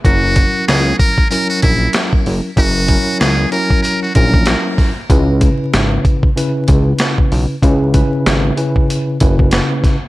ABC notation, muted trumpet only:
X:1
M:4/4
L:1/16
Q:"Swing 16ths" 1/4=95
K:F#mix
V:1 name="Muted trumpet"
F4 G2 A2 A F E2 z4 | F4 G2 A2 A F A3 z3 | z16 | z16 |]